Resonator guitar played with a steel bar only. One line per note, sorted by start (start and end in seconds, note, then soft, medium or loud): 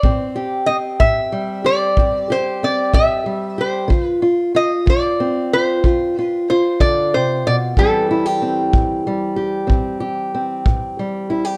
0.00 0.66 D5 medium
0.66 0.75 D#5 medium
1.00 1.65 E5 medium
1.66 2.32 D5 medium
2.32 2.64 C5 medium
2.64 2.93 D5 medium
2.94 3.61 E5 loud
3.61 4.03 C5 medium
4.03 4.20 B4 medium
4.56 4.86 D#5 medium
4.90 5.55 D5 medium
5.53 6.19 C5 loud
6.19 6.49 B4 loud
6.50 6.82 C5 medium
6.81 7.14 D5 medium
7.14 7.47 C5 medium
7.47 7.55 D5 medium
7.79 9.03 A4 medium